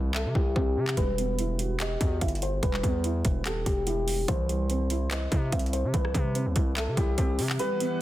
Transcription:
Already playing: 808-style bass C2, felt piano E3 G3 C4 E4 C5, grand piano B4
0.14 grand piano A4, felt piano E5, clap
0.25 808-style bass C3
0.35 808-style bass C2, felt piano E4, grand piano G4, kick
0.56 808-style bass C2, felt piano C4, grand piano G4, kick
0.77 808-style bass C3
0.88 clap
0.97 808-style bass E1, felt piano G3, grand piano B4, kick, closed hi-hat
1.18 felt piano B3, closed hi-hat
1.39 felt piano E4, closed hi-hat
1.59 felt piano F#4, closed hi-hat
1.80 felt piano G4, grand piano D#5, clap, closed hi-hat
2.01 808-style bass E2, felt piano F#4, kick, closed hi-hat
2.21 808-style bass G1, felt piano E4, grand piano E5, kick, closed hi-hat
2.28 closed hi-hat
2.35 closed hi-hat
2.42 grand piano C5, closed hi-hat
2.63 808-style bass E1, felt piano G3, grand piano B4, kick, closed hi-hat
2.74 clap
2.83 808-style bass E2, felt piano B3, kick, closed hi-hat
3.04 felt piano E4, closed hi-hat
3.25 808-style bass E1, kick, closed hi-hat
3.46 808-style bass D#1, felt piano G4, grand piano A4, clap, closed hi-hat
3.66 808-style bass E1, grand piano G4, kick, closed hi-hat
3.87 felt piano E4, grand piano G4, closed hi-hat
4.08 open hi-hat
4.28 808-style bass C2, felt piano E3, grand piano C5, kick, closed hi-hat
4.49 felt piano G3, closed hi-hat
4.70 felt piano C4, closed hi-hat
4.90 felt piano E4, closed hi-hat
5.11 felt piano C5, grand piano D#5, clap, closed hi-hat
5.32 808-style bass C3, felt piano E4, kick, closed hi-hat
5.52 808-style bass C2, felt piano C4, grand piano E5, kick, closed hi-hat
5.59 closed hi-hat
5.66 closed hi-hat
5.73 grand piano C5, closed hi-hat
5.84 808-style bass C3
5.94 808-style bass C2, felt piano E3, grand piano B4, kick, closed hi-hat
6.05 cross-stick
6.14 808-style bass C3, felt piano G3, kick, closed hi-hat
6.35 felt piano C4, closed hi-hat
6.46 808-style bass D#2
6.56 808-style bass C2, felt piano E4, kick, closed hi-hat
6.77 grand piano A4, felt piano E5, clap, closed hi-hat
6.88 808-style bass C3
6.97 808-style bass C2, felt piano E4, grand piano G4, kick, closed hi-hat
7.18 808-style bass C2, felt piano C4, grand piano G4, kick, closed hi-hat
7.39 808-style bass C3, open hi-hat
7.50 clap
7.59 analog synth pad E3 G3 B3 F#5, felt piano G3, grand piano B4, closed hi-hat
7.80 felt piano B3, closed hi-hat

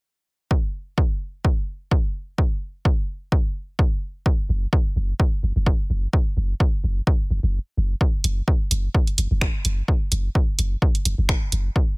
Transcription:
0.51 kick
0.98 kick
1.45 kick
1.91 kick
2.38 kick
2.85 kick
3.32 kick
3.79 kick
4.26 kick
4.49 sub bass F#1
4.73 kick
4.96 sub bass F#1
5.20 kick
5.43 sub bass F#1
5.56 sub bass F#1
5.66 kick
5.90 sub bass F#1
6.13 kick
6.37 sub bass F#1
6.60 kick
6.84 sub bass F#1
7.07 kick
7.30 sub bass F#1
7.43 sub bass F#1
7.77 sub bass F#1
8.01 kick
8.24 sub bass F#1, closed hi-hat
8.48 kick
8.71 sub bass F#1, closed hi-hat
8.95 kick
9.07 closed hi-hat
9.18 sub bass F#1, closed hi-hat
9.31 sub bass F#1
9.41 finger snap, kick
9.65 sub bass F#1, closed hi-hat
9.88 kick
10.12 sub bass F#1, closed hi-hat
10.35 kick
10.59 sub bass F#1, closed hi-hat
10.82 kick
10.95 closed hi-hat
11.05 sub bass F#1, closed hi-hat
11.18 sub bass F#1
11.29 finger snap, kick
11.52 sub bass F#1, closed hi-hat
11.76 kick

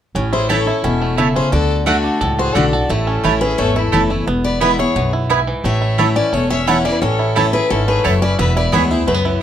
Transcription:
0.15 upright bass A1, steel-string acoustic guitar A2, five-string banjo C#4
0.33 five-string banjo E4, fiddle G#4, steel-string acoustic guitar C5
0.49 steel-string acoustic guitar E3 A3 C#4 E4 C#5, mandolin A3 E4 C#5 A5, five-string banjo A4, fiddle A4
0.67 steel-string acoustic guitar C#4 E4, five-string banjo E4
0.84 upright bass E1, steel-string acoustic guitar B2 A4, five-string banjo C#4, fiddle E4
1.02 five-string banjo A3
1.18 steel-string acoustic guitar C#3, mandolin A3 E4 C#5 A5, five-string banjo E4
1.35 five-string banjo C#4, fiddle G#4, steel-string acoustic guitar C5
1.52 upright bass D2, steel-string acoustic guitar D3 D5, five-string banjo F#4, fiddle A4
1.86 steel-string acoustic guitar D3 A3 D4 F#4 A4, mandolin A3 F#4 D5 F#5, five-string banjo A3, fiddle F#4
2.04 five-string banjo D4
2.21 upright bass C#2, steel-string acoustic guitar A2, five-string banjo A4
2.38 five-string banjo F#4, fiddle G#4, steel-string acoustic guitar C5
2.55 upright bass B1, steel-string acoustic guitar D3 A3 D4 F#4 D5, mandolin A3 F#4 D5 F#5, five-string banjo D4, fiddle A4
2.73 steel-string acoustic guitar D4 F#4, five-string banjo A4
2.89 upright bass A1, steel-string acoustic guitar A2 A4, five-string banjo A3, fiddle E4
3.07 five-string banjo C#4
3.23 upright bass A1, steel-string acoustic guitar E3 A3 C#4 E4, mandolin A3 E4 C#5 A5, five-string banjo E4
3.41 five-string banjo C#4, steel-string acoustic guitar C#4 E4 B4, fiddle G#4
3.58 upright bass G#1, steel-string acoustic guitar E2 C#5, five-string banjo A3, fiddle A4
3.76 fiddle E4, five-string banjo E4, steel-string acoustic guitar A4
3.92 upright bass F#1, steel-string acoustic guitar E3 A3 C#4 E4, mandolin A3 E4 C#5 A5, five-string banjo A4
4.10 five-string banjo A3, steel-string acoustic guitar C#4 E4
4.27 upright bass E1, steel-string acoustic guitar E2, five-string banjo B3
4.44 fiddle B4, steel-string acoustic guitar D5
4.61 steel-string acoustic guitar E3 G#3 B3 E4 E5, mandolin B3 E4 B4 G#5, five-string banjo B3, fiddle B4
4.79 steel-string acoustic guitar B3 E4 C#5, five-string banjo E4, fiddle G#4
4.95 upright bass B1, steel-string acoustic guitar F#2, five-string banjo B3
5.13 five-string banjo E4
5.30 steel-string acoustic guitar G#2, mandolin B3 E4 B4 G#5, five-string banjo E4
5.47 five-string banjo E3
5.64 upright bass A1, steel-string acoustic guitar A2 E5, five-string banjo A3, fiddle C#5
5.82 five-string banjo E4
5.98 steel-string acoustic guitar E3 A3 C#4 E4, mandolin A3 E4 C#5 A5, five-string banjo A3
6.16 five-string banjo C#4, steel-string acoustic guitar C#4 E4 D5, fiddle B4
6.33 upright bass E1, steel-string acoustic guitar E2 C#5, five-string banjo A3, fiddle A4
6.50 five-string banjo C#4, fiddle C#5, steel-string acoustic guitar E5
6.67 steel-string acoustic guitar E3 A3 C#4 E4 F#5, mandolin A3 E4 C#5 A5, five-string banjo E4, fiddle C#5
6.85 five-string banjo E3, steel-string acoustic guitar C#4 E4 D5, fiddle B4
7.01 upright bass A1, steel-string acoustic guitar A2 C#5, five-string banjo C#4, fiddle A4
7.19 five-string banjo E4
7.36 steel-string acoustic guitar E3 A3 C#4 E4, mandolin A3 E4 C#5 A5, five-string banjo A4
7.53 steel-string acoustic guitar C#4 E4 B4, five-string banjo E4, fiddle G#4
7.70 upright bass G#1, steel-string acoustic guitar G#2 A4, five-string banjo C#4, fiddle E4
7.88 five-string banjo A3, fiddle G#4, steel-string acoustic guitar B4
8.04 upright bass F#1, steel-string acoustic guitar F#2 C#5, mandolin A3 E4 C#5 A5, five-string banjo E4, fiddle A4
8.22 five-string banjo C#4, fiddle B4, steel-string acoustic guitar D5
8.39 upright bass E1, steel-string acoustic guitar E2 E5, five-string banjo B3, fiddle B4
8.56 five-string banjo E4, fiddle B4, steel-string acoustic guitar D5
8.72 upright bass D2, steel-string acoustic guitar E3 G#3 B3 E4 C#5, mandolin B3 E4 B4 G#5, five-string banjo B3, fiddle G#4
8.90 steel-string acoustic guitar B3 E4 C5, five-string banjo E4, fiddle G#4
9.07 upright bass C#2, steel-string acoustic guitar F#2 B4, five-string banjo A3, fiddle G#4
9.14 five-string banjo B3
9.25 fiddle C#4, five-string banjo E4, steel-string acoustic guitar E4

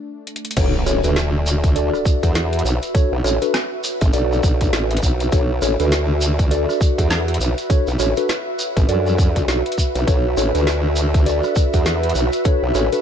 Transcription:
Already playing: analog synth pad A3 D4
0.27 closed hi-hat
0.36 closed hi-hat
0.45 closed hi-hat
0.51 closed hi-hat
0.57 wobble bass B1, tine electric piano D4 F#4 A4 C#5, ambient pad F#4, kick, closed hi-hat, crash, impact, shekere
0.80 ambient pad E5
0.86 wobble bass A1, tine electric piano D4 F#4 A4 C#5, cross-stick, closed hi-hat, shekere
1.03 wobble bass D2, tine electric piano D4 F#4 A4 B4, ambient pad B4, closed hi-hat, shekere
1.16 snare, closed hi-hat, shekere
1.46 closed hi-hat, shekere
1.64 kick, closed hi-hat, shekere
1.75 tine electric piano D4 F#4 A4 D5, closed hi-hat, shekere
1.93 cross-stick, shekere
2.05 kick, shekere
2.23 wobble bass E2, kick, closed hi-hat, shekere
2.35 snare, closed hi-hat, shekere
2.53 closed hi-hat
2.59 closed hi-hat
2.65 wobble bass B1, shekere
2.82 closed hi-hat, shekere
2.95 tine electric piano D4 F#4 A4 C#5, kick, closed hi-hat, shekere
3.12 wobble bass B1
3.24 wobble bass A1, tine electric piano D4 F#4 A4 C#5, cross-stick, closed hi-hat, shekere
3.42 tine electric piano D4 F#4 A4 B4, closed hi-hat, shekere
3.54 snare, closed hi-hat, shekere
3.84 closed hi-hat, shekere
4.01 wobble bass A1, kick, closed hi-hat, shekere
4.13 wobble bass B1, tine electric piano D4 F#4 A4 D5, closed hi-hat, shekere
4.32 shekere
4.43 wobble bass B1, kick, shekere
4.61 kick, closed hi-hat, shekere
4.73 wobble bass A1, snare, closed hi-hat, shekere
4.91 closed hi-hat
4.97 closed hi-hat
5.03 wobble bass B1, kick, shekere
5.20 closed hi-hat, shekere
5.32 wobble bass B1, tine electric piano D4 F#4 A4 C#5, kick, closed hi-hat, shekere
5.62 wobble bass A1, tine electric piano D4 F#4 A4 C#5, cross-stick, closed hi-hat, shekere
5.80 wobble bass D2, tine electric piano D4 F#4 A4 B4, closed hi-hat, shekere
5.92 snare, closed hi-hat, shekere
6.21 closed hi-hat, shekere
6.39 kick, closed hi-hat, shekere
6.51 tine electric piano D4 F#4 A4 D5, closed hi-hat, shekere
6.69 cross-stick, shekere
6.81 kick, shekere
6.98 wobble bass E2, kick, closed hi-hat, shekere
7.10 snare, closed hi-hat, shekere
7.28 closed hi-hat
7.34 closed hi-hat
7.40 wobble bass B1, shekere
7.58 closed hi-hat, shekere
7.70 tine electric piano D4 F#4 A4 C#5, kick, closed hi-hat, shekere
7.87 wobble bass B1, shekere
7.99 wobble bass A1, tine electric piano D4 F#4 A4 C#5, cross-stick, closed hi-hat, shekere
8.17 tine electric piano D4 F#4 A4 B4, closed hi-hat, shekere
8.29 snare, closed hi-hat, shekere
8.59 closed hi-hat, shekere
8.77 wobble bass A1, kick, closed hi-hat, shekere
8.88 wobble bass F#2, tine electric piano D4 F#4 A4 D5, closed hi-hat, shekere
9.07 shekere
9.18 kick, shekere
9.36 kick, closed hi-hat, shekere
9.48 wobble bass B1, snare, closed hi-hat, shekere
9.66 closed hi-hat
9.72 closed hi-hat
9.78 kick, shekere
9.95 wobble bass B1, closed hi-hat, shekere
10.07 wobble bass B1, tine electric piano D4 F#4 A4 C#5, kick, closed hi-hat, shekere
10.37 wobble bass A1, tine electric piano D4 F#4 A4 C#5, cross-stick, closed hi-hat, shekere
10.55 wobble bass D2, tine electric piano D4 F#4 A4 B4, closed hi-hat, shekere
10.67 snare, closed hi-hat, shekere
10.96 closed hi-hat, shekere
11.14 kick, closed hi-hat, shekere
11.26 tine electric piano D4 F#4 A4 D5, closed hi-hat, shekere
11.43 cross-stick, shekere
11.56 kick, shekere
11.73 wobble bass E2, kick, closed hi-hat, shekere
11.86 snare, closed hi-hat, shekere
12.03 closed hi-hat
12.09 closed hi-hat
12.15 wobble bass B1, shekere
12.32 closed hi-hat, shekere
12.45 tine electric piano D4 F#4 A4 C#5, kick, closed hi-hat, shekere
12.63 wobble bass B1
12.75 wobble bass A1, tine electric piano D4 F#4 A4 C#5, cross-stick, closed hi-hat, shekere
12.93 tine electric piano D4 F#4 A4 B4, closed hi-hat, shekere

